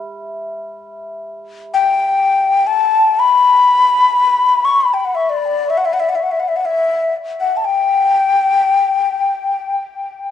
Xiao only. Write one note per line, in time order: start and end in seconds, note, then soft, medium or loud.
1.74 2.68 G5 medium
2.67 3.21 A5 medium
3.20 4.66 B5 medium
4.65 4.82 C#6 medium
4.81 4.95 B5 medium
4.94 5.00 G5 medium
5.00 5.06 G5 soft
5.05 5.16 F#5 medium
5.15 5.31 E5 medium
5.30 5.72 D5 medium
5.70 5.79 E5 medium
5.78 5.87 F#5 medium
5.85 5.95 E5 medium
5.93 6.01 F#5 medium
6.00 6.11 E5 medium
6.09 6.17 F#5 medium
6.15 6.25 E5 medium
6.23 6.33 F#5 medium
6.31 6.41 E5 medium
6.40 6.50 F#5 medium
6.48 6.58 E5 medium
6.56 6.67 F#5 medium
6.65 7.14 E5 medium
7.40 7.58 F#5 medium
7.57 7.66 A5 medium
7.65 9.75 G5 medium